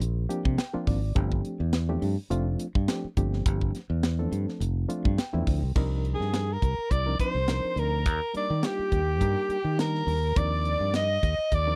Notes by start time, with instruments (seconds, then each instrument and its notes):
0.00 fingered electric bass A#1, closed hi-hat
0.29 reed electric piano F3 A#3 C4 D4 G4, closed hi-hat
0.45 fingered electric bass C3, kick
0.58 reed electric piano G5, snare, closed hi-hat
0.73 reed electric piano F3 A#3 C4 D4 F4, muted fingered electric bass stroke
0.87 fingered electric bass G#1, reed electric piano D5, kick, open hi-hat
1.15 fingered electric bass G1, reed electric piano F3 A3 C4 D4 G4, kick, closed hi-hat
1.32 kick
1.45 closed hi-hat
1.60 fingered electric bass E2
1.73 snare, closed hi-hat
1.89 reed electric piano F3 A3 C4 D4 G4
2.02 fingered electric bass G2, open hi-hat
2.30 fingered electric bass F1, reed electric piano F3 A3 C4 D4 F4, closed hi-hat
2.59 closed hi-hat
2.75 fingered electric bass G2, kick
2.88 reed electric piano F3 A3 C4 D4 G4, snare, closed hi-hat
3.04 muted fingered electric bass stroke
3.17 fingered electric bass G1, reed electric piano F3 A3 C4 D4 G4, kick, closed hi-hat
3.33 snare
3.46 fingered electric bass G1, kick, closed hi-hat
3.61 kick
3.75 snare, closed hi-hat
3.90 fingered electric bass E2
4.03 snare, closed hi-hat
4.19 reed electric piano F3 A3 C4 D4 A4
4.32 fingered electric bass G2, closed hi-hat
4.48 snare
4.60 fingered electric bass F1, closed hi-hat
4.88 reed electric piano F3 A3 C4 D4 F4, closed hi-hat
5.05 fingered electric bass G2, kick
5.18 reed electric piano G5, snare, closed hi-hat
5.33 fingered electric bass E2, reed electric piano F3 A3 C4 D4 E4
5.47 fingered electric bass D2, kick, open hi-hat
5.62 fingered electric bass C2
5.75 fingered electric bass C2, reed electric piano F3 C4 D4 D#4 A#4, kick, crash
6.05 closed hi-hat
6.14 soprano saxophone G#4, flute G#4
6.20 fingered electric bass G2, snare
6.33 snare, closed hi-hat
6.53 soprano saxophone A#4, flute A#4
6.62 fingered electric bass C2, kick, closed hi-hat
6.78 muted fingered electric bass stroke
6.91 fingered electric bass C2, soprano saxophone D5, flute D5, kick, closed hi-hat
7.06 reed electric piano F3 C4 D4 D#4 A#4
7.19 reed electric piano F3 C4 D4 D#4 C5, soprano saxophone C5, flute C5, kick, closed hi-hat
7.34 fingered electric bass C2
7.48 reed electric piano F3 C4 D4 D#4 A#4, snare, closed hi-hat
7.76 fingered electric bass D2, soprano saxophone A#4, closed hi-hat
7.80 flute A#4
8.06 fingered electric bass D#2, kick, closed hi-hat
8.34 reed electric piano G3 A#3 D4 D#4 A#4, flute D5, soprano saxophone D5, muted fingered electric bass stroke, closed hi-hat
8.50 fingered electric bass D#3
8.62 reed electric piano G3 A#3 D4 D#4 F4, soprano saxophone G4, snare, closed hi-hat
8.67 flute G4
8.79 muted fingered electric bass stroke
8.92 fingered electric bass D#2, kick, closed hi-hat
9.20 fingered electric bass G2, reed electric piano G3 A#3 D4 D#4 A#4, kick, closed hi-hat
9.49 muted fingered electric bass stroke, closed hi-hat
9.64 fingered electric bass D#3
9.78 reed electric piano G3 A#3 D4 D#4 G4, soprano saxophone A#4, flute A#4, snare, closed hi-hat
9.95 snare
10.07 fingered electric bass D#2, open hi-hat
10.36 fingered electric bass D#2, reed electric piano F3 C4 D4 D#4 A#4, soprano saxophone D5, flute D5, kick, closed hi-hat
10.65 closed hi-hat
10.80 fingered electric bass G2
10.94 soprano saxophone D#5, flute D#5, snare, closed hi-hat
11.23 fingered electric bass D#2, kick, closed hi-hat
11.38 muted fingered electric bass stroke
11.52 fingered electric bass D#2, flute D5, soprano saxophone D5, kick, closed hi-hat
11.66 reed electric piano F3 C4 D4 D#4 A#4